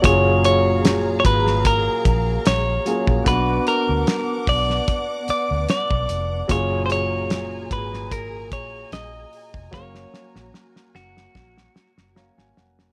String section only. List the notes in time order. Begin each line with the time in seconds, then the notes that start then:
0.03 G#4 F5 A#5
3.27 B3 F#5 D6
6.49 G#4 G#5 A#5
9.73 F#4